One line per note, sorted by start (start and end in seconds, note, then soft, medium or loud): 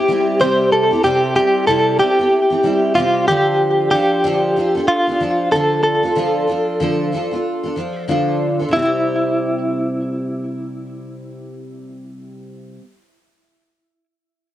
0.00 0.43 G4 medium
0.08 0.39 G3 medium
0.08 0.39 C4 medium
0.08 0.40 E4 medium
0.08 0.40 G4 medium
0.39 0.91 C3 medium
0.39 0.91 G3 medium
0.39 0.91 C4 medium
0.39 0.91 E4 medium
0.39 0.90 G4 medium
0.39 0.72 C5 medium
0.72 1.04 A4 medium
0.91 1.03 C4 soft
0.91 1.03 E4 soft
0.91 1.04 G4 medium
1.03 1.36 C3 medium
1.03 1.34 G3 medium
1.03 1.35 C4 medium
1.03 1.35 E4 medium
1.03 1.35 G4 medium
1.03 1.36 G4 medium
1.35 1.67 G3 medium
1.35 1.67 C4 medium
1.35 1.67 E4 medium
1.35 1.67 G4 medium
1.67 1.99 C3 medium
1.67 1.97 G3 medium
1.67 1.98 C4 medium
1.67 1.99 E4 medium
1.67 2.00 G4 medium
1.67 1.99 A4 medium
1.99 2.18 G3 medium
1.99 2.19 C4 soft
1.99 2.19 E4 soft
1.99 2.95 G4 medium
1.99 2.18 G4 medium
2.19 2.51 C4 soft
2.19 2.50 E4 soft
2.19 2.49 G4 soft
2.50 2.63 C4 soft
2.50 2.64 E4 soft
2.50 2.63 G4 soft
2.63 2.95 G3 medium
2.63 2.96 C4 medium
2.63 2.96 E4 medium
2.63 2.96 G4 medium
2.95 3.28 C3 medium
2.95 3.28 G3 medium
2.95 3.28 C4 medium
2.95 3.27 F4 medium
2.95 3.29 G4 medium
3.28 3.92 D3 medium
3.28 3.91 F3 medium
3.28 3.91 D4 medium
3.28 3.92 F4 medium
3.28 3.90 G4 medium
3.28 3.92 A4 medium
3.91 4.23 F3 medium
3.91 4.23 D4 medium
3.91 4.24 F4 medium
3.91 4.88 G4 medium
3.91 4.24 A4 medium
4.24 4.56 D3 medium
4.24 4.55 F3 medium
4.24 4.56 D4 medium
4.24 4.56 F4 medium
4.24 4.56 A4 medium
4.56 4.75 F3 soft
4.56 4.76 D4 soft
4.56 4.75 F4 medium
4.56 4.74 A4 medium
4.75 5.08 D4 soft
4.75 5.07 F4 soft
4.75 5.06 A4 soft
4.88 5.48 F4 medium
5.07 5.20 D4 soft
5.07 5.20 F4 soft
5.07 5.20 A4 soft
5.20 5.52 F3 soft
5.20 5.52 D4 medium
5.20 5.52 F4 medium
5.20 5.52 A4 medium
5.52 6.03 D3 medium
5.52 6.04 F3 medium
5.52 6.04 D4 medium
5.52 6.03 F4 medium
5.52 5.82 A4 medium
5.52 6.02 A4 medium
5.83 8.04 A4 medium
6.03 6.15 D4 soft
6.03 6.16 F4 soft
6.03 6.16 A4 soft
6.15 6.48 D3 medium
6.15 6.46 F3 medium
6.15 6.47 D4 medium
6.15 6.48 F4 medium
6.15 6.48 A4 medium
6.47 6.79 F3 soft
6.47 6.79 D4 soft
6.47 6.80 F4 medium
6.47 6.80 A4 medium
6.80 7.12 D3 medium
6.80 7.11 F3 medium
6.80 7.12 D4 medium
6.80 7.13 F4 medium
6.80 7.13 A4 medium
7.12 7.31 F3 soft
7.12 7.32 D4 medium
7.12 7.31 F4 medium
7.12 7.30 A4 medium
7.31 7.64 D4 soft
7.31 7.63 F4 soft
7.31 7.62 A4 soft
7.63 7.76 D4 soft
7.63 7.76 F4 soft
7.63 7.76 A4 soft
7.76 8.07 F3 medium
7.76 8.08 D4 medium
7.76 8.08 F4 medium
7.76 8.08 A4 medium
8.08 8.59 D3 medium
8.08 8.60 F3 medium
8.08 8.60 D4 medium
8.08 8.59 F4 medium
8.08 8.58 A4 medium
8.59 8.73 D4 soft
8.59 8.73 F4 soft
8.59 8.72 A4 soft
8.69 12.77 C3 medium
8.73 12.79 G3 medium
8.73 12.81 C4 medium
8.73 12.75 E4 medium
8.79 12.83 E4 medium
8.79 12.84 G4 medium